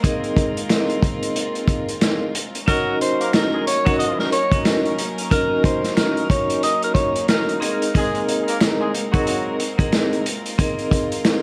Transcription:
Already playing: string section G#3 A#3 C4 F4 A#4
0.03 vibraphone C4 D#4 G#4 A#4 D#5, kick, closed hi-hat
0.24 closed hi-hat
0.36 kick, closed hi-hat
0.57 closed hi-hat
0.69 finger snap, snare, closed hi-hat
0.90 closed hi-hat
1.02 kick, closed hi-hat
1.23 closed hi-hat
1.36 closed hi-hat
1.55 closed hi-hat
1.68 kick, closed hi-hat
1.89 closed hi-hat
2.01 finger snap, snare, closed hi-hat
2.35 closed hi-hat
2.55 closed hi-hat
2.66 string section F#3 A#3 C#4 D#4 A#4, horn section F#3 F#4, vibraphone C#4 D#4 F#4 A#4 D#5, tenor saxophone A#4, kick, closed hi-hat
3.01 tenor saxophone C5, closed hi-hat
3.20 horn section A#3 A#4, closed hi-hat
3.33 tenor saxophone A#4, finger snap, snare, closed hi-hat
3.53 horn section G#3 G#4
3.67 tenor saxophone C#5, closed hi-hat
3.85 horn section F#3 F#4, vibraphone C#4 D#4 F#4 A#4 D#5, kick, closed hi-hat
3.99 tenor saxophone D#5, closed hi-hat
4.19 tenor saxophone A#4, snare
4.32 tenor saxophone C#5, closed hi-hat
4.51 vibraphone C#4 D#4 F#4 A#4 D#5, kick, closed hi-hat
4.65 finger snap, snare, closed hi-hat
4.85 closed hi-hat
4.99 closed hi-hat
5.18 closed hi-hat
5.30 vibraphone C#4 D#4 F#4 A#4 D#5, tenor saxophone A#4, kick, closed hi-hat
5.64 tenor saxophone C5, kick, closed hi-hat
5.84 snare, closed hi-hat
5.97 tenor saxophone A#4, finger snap, snare, closed hi-hat
6.17 closed hi-hat
6.30 tenor saxophone C#5, kick, closed hi-hat
6.50 closed hi-hat
6.63 tenor saxophone D#5, closed hi-hat
6.83 tenor saxophone A#4, closed hi-hat
6.94 tenor saxophone C#5, kick, closed hi-hat
7.16 closed hi-hat
7.28 tenor saxophone A#4, finger snap, snare, closed hi-hat
7.49 closed hi-hat
7.60 string section G#3 C4 A#4, vibraphone C4 D#4 G#4 A#4 D#5, closed hi-hat
7.82 closed hi-hat
7.94 horn section G#3 G#4, vibraphone C4 D#4 G#4 A#4 D#5, kick, closed hi-hat
8.15 closed hi-hat
8.29 closed hi-hat
8.47 horn section A#3 A#4, closed hi-hat
8.61 finger snap, snare, closed hi-hat
8.80 horn section G#3 G#4
8.95 closed hi-hat
9.12 horn section F#3 F#4, vibraphone C4 D#4 G#4 A#4 D#5, kick, closed hi-hat
9.27 closed hi-hat
9.60 closed hi-hat
9.78 vibraphone C4 D#4 G#4 A#4 D#5, kick, closed hi-hat
9.92 finger snap, snare, closed hi-hat
10.13 closed hi-hat
10.24 string section F4, closed hi-hat
10.46 closed hi-hat
10.58 vibraphone C4 D#4 G#4 A#4 D#5, kick, closed hi-hat
10.79 closed hi-hat
10.91 kick, closed hi-hat
11.12 closed hi-hat
11.25 finger snap, snare, closed hi-hat

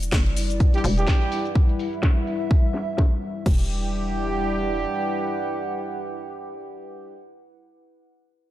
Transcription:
Already playing: fm bass E1, analog synth pad G3 E4 D5, ambient pad E4
0.03 closed hi-hat, cabasa
0.12 fm bass F#1, ambient pad B4, kick, snare, closed hi-hat, cabasa
0.26 closed hi-hat
0.37 open hi-hat, cabasa
0.50 closed hi-hat, cabasa
0.60 kick, closed hi-hat, cabasa
0.74 horn section G3 D4 E4 G4, closed hi-hat
0.79 ambient pad F#5
0.84 fm bass E1, open hi-hat, cabasa
0.98 horn section G3 D4 E4 G4, closed hi-hat, cabasa
1.07 kick, snare, closed hi-hat, cabasa
1.22 closed hi-hat
1.32 open hi-hat, cabasa
1.45 closed hi-hat, cabasa
1.56 analog synth pad E5, kick, closed hi-hat, cabasa
1.69 closed hi-hat
1.79 open hi-hat, cabasa
1.93 closed hi-hat, cabasa
2.03 kick, snare
2.17 closed hi-hat
2.27 open hi-hat, cabasa
2.41 closed hi-hat, cabasa
2.51 kick
2.64 closed hi-hat
2.74 snare, open hi-hat, cabasa
2.88 closed hi-hat, cabasa
2.98 kick, snare
3.12 closed hi-hat
3.22 open hi-hat, cabasa
3.36 closed hi-hat
3.46 fm bass E1, horn section G3 D4 E4 G4, analog synth pad G3 E4 D5, ambient pad E4, kick, crash
3.54 ambient pad B4
3.62 ambient pad F#5

